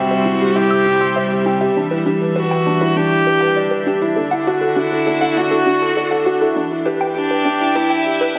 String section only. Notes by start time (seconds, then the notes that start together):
Already playing: C3 G3 C4 D4 E5
1.77 E3
2.06 D4
4.17 D3
4.54 F#4
6.56 E3
7.06 G4
7.34 E5